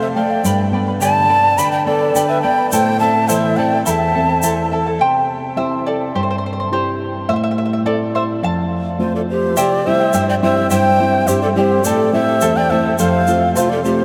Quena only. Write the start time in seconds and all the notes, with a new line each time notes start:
0.02 E5
0.15 G5
1.02 A5
1.58 B5
1.71 G5
1.86 D5
2.28 E5
2.42 G5
2.70 G5
3.00 A5
3.28 E5
3.56 G5
3.86 B5
3.90 A5
9.00 C5
9.15 D5
9.29 C5
9.58 D5
9.87 E5
10.29 G5
10.43 E5
10.71 G5
11.28 C5
11.41 D5
11.56 D5
11.61 C5
11.85 D5
12.13 E5
12.57 G5
12.70 E5
12.99 F5
13.55 C5
13.69 D5
13.83 C5